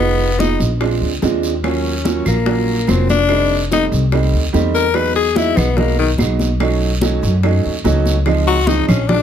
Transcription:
Already playing: F1 B3
0.00 G#3 B3 D#4 F4
0.19 high bongo, high conga
0.39 G#3 B3 D#4 F4, high bongo, high conga, short guiro
0.60 A#1, high bongo, short guiro
0.81 G#3 C4 D4 F4, high bongo, high conga, long guiro, claves
1.01 D2, high conga
1.22 D#2 G#3 C4 D4 F4, high bongo, low bongo, high conga, short guiro
1.43 high bongo, short guiro
1.64 F#3 A#3 C#4 F4, high bongo, high conga, long guiro, claves
1.84 high bongo, high conga
2.04 F#3 A#3 C#4 F4, high bongo, high conga, short guiro
2.25 A#1 A#3, high bongo, high conga, low conga, short guiro, claves
2.46 F#3 A#3 C#4 F4, high bongo, high conga, long guiro
2.68 high conga
2.87 F1 F#3 A#3 C4 C#4 F4, high bongo, low bongo, high conga, short guiro, claves
3.09 D4, high bongo, high conga, short guiro
3.29 G3 A3 C4 D#4, high bongo, high conga, long guiro, claves
3.50 high bongo, high conga
3.71 G3 A3 C4 D#4, high bongo, high conga, short guiro
3.92 C2, high bongo, short guiro
4.12 G3 A3 C4 D#4, high bongo, high conga, long guiro, claves
4.33 D2, high conga
4.53 E2 G3 A3 C4 D#4, high bongo, low bongo, high conga, short guiro
4.74 A#4, high bongo, short guiro
4.94 F#3 G#3 B3 D#4 B4, high bongo, high conga, long guiro, claves
5.15 G#4, high bongo, high conga
5.36 F#3 G#3 B3 D#4 E4, high bongo, high conga, short guiro
5.56 B1 B3, high bongo, high conga, low conga, short guiro, claves
5.77 F#3 G#3 A#3 B3 D#4, high bongo, high conga, low conga, long guiro
5.98 D#3, high conga
6.18 B1 F#3 G#3 B3 D#4, high bongo, low bongo, high conga, short guiro, claves
6.39 high bongo, high conga, short guiro
6.60 F#3 A3 C#4 D#4, high bongo, high conga, long guiro, claves
6.81 high bongo, high conga
7.01 F#3 A3 C#4 D#4, high bongo, high conga, short guiro
7.22 F#2, high bongo, short guiro
7.43 F#3 A3 C#4 D#4, high bongo, high conga, long guiro, claves
7.64 D#2, high conga
7.84 C#2 F#3 A3 C#4 D#4, high bongo, low bongo, high conga, short guiro
8.06 high bongo, high conga, short guiro
8.26 F3 G#3 C4 D#4, high bongo, high conga, long guiro, claves
8.47 F#4, high bongo, high conga
8.67 F3 G#3 C4 D#4, high bongo, high conga, short guiro
8.88 A#1 C#4, high bongo, high conga, low conga, short guiro, claves
9.08 F#3 G#3 D4 F4, high bongo, high conga, low conga, long guiro

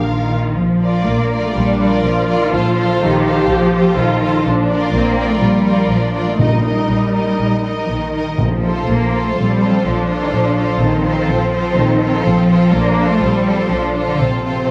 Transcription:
Already playing: A#1 A#2 F3 D4 F4 A#4 F5
0.08 D#3 F4
0.57 A#1 A#2 F3
0.74 D4
0.82 F4 A#4 D5
0.91 A#3
1.07 A#1 A#3 D4
1.23 A#3
1.32 F4 A#4 D5
1.39 F3 A3
1.55 A#1 G3 A#3 D4
1.72 D4
1.79 F4 A#4 D5
1.89 A#3
2.04 A#1 F3 D4 F4
2.21 A#3
2.28 F4 A#4 D5
2.37 D#3 F3
2.52 A#1 A#2 F3 F4 A4 C5
2.69 C4
2.76 F4 A4 C5
2.85 A#3
3.01 A#1 D#3 C4 G4
3.17 A#3
3.23 F4 A4 C5
3.34 F3
3.50 A#1 A#2 F3
3.66 C4
3.73 F4 A4 C5
3.81 A#3
3.97 A#1 D#3 C4 F4
4.13 A#3
4.21 F4 A4 C5
4.30 F3
4.46 A#1 A#2 F3 D4
4.62 D4
4.70 F4 A#4 D5
4.77 F3
4.94 A#1 A#3 C4 D4
5.10 F3
5.17 F4 A#4 D5
5.25 A#3
5.30 A3
5.41 A#1 F3 G3 A#3
5.57 D4
5.65 F4 A#4 D5
5.73 F3
5.89 A#1 F3 D4
6.06 F3
6.15 F4 A#4 D5
6.22 A#3
6.28 A3
6.38 A#1 A#2 G3 D#4 A#4
6.43 D#5
6.55 D#4
6.65 D#4 A#4 D#5
6.72 G3
6.89 A#1 D#4
7.06 G3
7.14 D#4 A#4 D#5
7.22 A#3
7.40 A#1 G3
7.56 D#4
7.64 D#4 A#4 D#5
7.73 G3
7.89 A#1 D#3 D#4
8.05 G3
8.14 D#4 A#4 D#5
8.22 A#3
8.38 A#1 A#2 F3
8.55 F4
8.62 F4 A4 C5
8.70 F3
8.87 A#1 A#3 F4
9.03 F3
9.10 F4 A4 C5
9.19 C4
9.25 A3
9.36 A#1 A#2 G3 C4
9.52 F4
9.60 F4 A4 C5
9.69 F3
9.85 A#1 F3 D4 F4
10.01 F3
10.09 F4 A4 C5
10.17 C4
10.22 D#3
10.33 A#1 A#2 F3
10.50 F4
10.57 F4 A4 C5
10.66 F3
10.81 A#1 D#3 C4 F4
10.97 F3
11.05 F4 A4 C5
11.14 C4
11.29 A#1 A#2 F3
11.46 F4
11.52 F4 A4 C5
11.62 F3
11.77 A#1 D#3 F4
11.95 F3
12.02 F4 A4 C5
12.11 C4
12.25 A#1 A#2 F3
12.42 F4
12.49 F4 A4 C5
12.58 F3
12.74 A#1 A#3 D4 F4
12.90 F3
12.99 F4 A4 C5
13.06 C4
13.11 A3
13.21 A#1 A#2 G3 C4
13.38 F4
13.48 F4 A4 C5
13.55 F3
13.71 A#1 F3 D4 F4
13.87 F3
13.96 F4 A4 C5
14.03 C4
14.08 D3
14.19 A#1 A#2 C3 C4
14.37 F4
14.46 F4 A4 C5
14.53 F3

